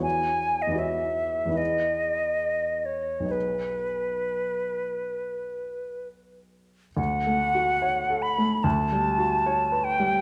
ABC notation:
X:1
M:4/4
L:1/16
Q:1/4=71
K:B
V:1 name="Flute"
g3 d e4 d6 c2 | B12 z4 | [K:D] f6 b2 a6 g2 |]
V:2 name="Grand piano"
[E,,B,EFc]4 [E,,B,EFc]4 [E,,B,EGB]8 | [B,,,B,DGB]16 | [K:D] (3D,,2 A,2 F2 (3c2 A2 A,2 (3D,,2 G,2 F2 (3c2 B2 G,2 |]